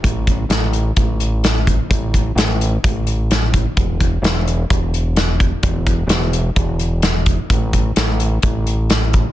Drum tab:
HH |xxxxxxxx|xxxxxxxx|xxxxxxxx|xxxxxxxx|
SD |--o---o-|--o---o-|--o---o-|--o---o-|
BD |oo--o--o|oo--o--o|oo--o--o|oo--o--o|

HH |xxxxxxxx|
SD |--o---o-|
BD |oo--o--o|